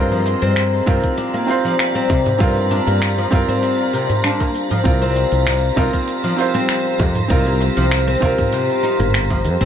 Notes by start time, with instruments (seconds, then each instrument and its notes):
Already playing: fretless electric bass G2, felt piano C4 F4 A#4, ambient pad G4 D5 F5 A#5, synth texture A#5
0.11 oud F3, darbuka ka
0.26 open hi-hat, darbuka ka, shaker
0.42 fretless electric bass G2, oud C4, open hi-hat, shaker
0.56 finger snap, open hi-hat, shaker
0.86 fretless electric bass G2, oud C3, felt piano C4 F4 A#4, kick, darbuka tek, shaker
1.04 kick, open hi-hat, shaker
1.18 oud D4, open hi-hat, shaker
1.34 oud A#3, darbuka tek
1.46 felt piano C4 F4, open hi-hat, darbuka ka, shaker
1.50 felt piano C5
1.65 oud F3, open hi-hat, shaker
1.79 finger snap, open hi-hat, shaker
1.95 oud C4
2.10 fretless electric bass C3, kick, open hi-hat, darbuka tek, shaker
2.26 open hi-hat, darbuka dum, shaker
2.38 fretless electric bass G2, oud C3, felt piano C4 F4, kick, open hi-hat, shaker
2.42 felt piano A#4
2.57 darbuka ka
2.71 oud D4, open hi-hat, darbuka ka, shaker
2.87 fretless electric bass G2, oud A#3, open hi-hat, shaker
3.02 finger snap, open hi-hat, shaker
3.18 oud F3
3.31 fretless electric bass G2, felt piano C4 F4, kick, darbuka tek, shaker
3.35 felt piano A#4
3.48 oud C4, open hi-hat, darbuka dum, shaker
3.62 open hi-hat, darbuka ka, shaker
3.93 oud C3, open hi-hat, shaker
4.10 open hi-hat, darbuka tek, darbuka dum, shaker
4.24 oud D4, finger snap, open hi-hat, shaker
4.40 oud A#3, kick, darbuka tek
4.55 open hi-hat, shaker
4.71 oud F3, open hi-hat, darbuka dum, shaker
4.84 fretless electric bass C2, felt piano C4 F4 A#4, ambient pad G4 C5 C6, kick, open hi-hat, shaker
5.02 oud C4, darbuka ka
5.16 open hi-hat, darbuka ka, shaker
5.32 fretless electric bass C2, open hi-hat, shaker
5.47 oud C3, finger snap, open hi-hat, shaker
5.76 fretless electric bass C2, felt piano C4 F4 A#4, oud D#4, kick, darbuka tek, shaker
5.93 oud A#3, kick, open hi-hat, shaker
6.08 open hi-hat, shaker
6.24 oud F3, darbuka tek
6.36 felt piano C4 F4 C5, open hi-hat, darbuka ka, shaker
6.54 oud C4, open hi-hat, shaker
6.69 finger snap, open hi-hat, shaker
6.99 fretless electric bass F2, oud C3, kick, open hi-hat, darbuka tek, shaker
7.16 open hi-hat, darbuka dum, shaker
7.28 fretless electric bass C2, felt piano C4 F4, oud D#4, kick, open hi-hat, shaker
7.32 felt piano A#4
7.46 oud A#3, darbuka ka, shaker
7.61 open hi-hat, darbuka ka, shaker
7.77 fretless electric bass C2, oud F3, open hi-hat, darbuka ka, shaker
7.92 finger snap, open hi-hat, shaker
8.08 oud C4, shaker
8.20 fretless electric bass C2, felt piano C4 F4 A#4, kick, darbuka tek, shaker
8.38 kick, open hi-hat, darbuka dum, shaker
8.53 oud C3, open hi-hat, darbuka ka, shaker
8.70 shaker
8.83 oud D#4, open hi-hat, shaker
8.99 fretless electric bass G1, oud A#3, open hi-hat, darbuka tek, darbuka dum, shaker
9.14 finger snap, open hi-hat, shaker
9.30 oud F3, kick, darbuka tek
9.45 fretless electric bass F2, open hi-hat, shaker
9.61 fretless electric bass G1, oud C4, open hi-hat, darbuka dum, shaker